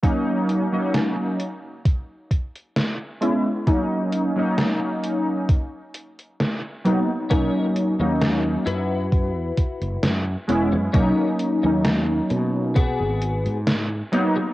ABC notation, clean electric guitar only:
X:1
M:4/4
L:1/8
Q:"Swing 16ths" 1/4=66
K:F#mix
V:1 name="Clean electric guitar"
z8 | z8 | [CDA] z2 [EFB]3 z2 | [CDA] z3 [B,FG]2 z2 |]